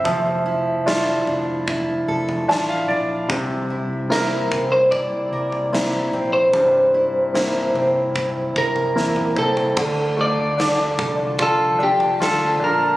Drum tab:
CC |----------------|----------------|----------------|x---------------|
SD |----o-------o---|----o-------o---|----o-------o---|----o-------o---|
T1 |----------------|----------------|-------------o--|----------------|
T2 |----------------|----------------|--------------o-|----------------|
FT |o-----o-o--o----|o-----o-o--o-o--|o-----o-o--o---o|o-----o-o--o----|
BD |--------o-------|o-----o-o-------|--------o-o-----|o-----o-o-------|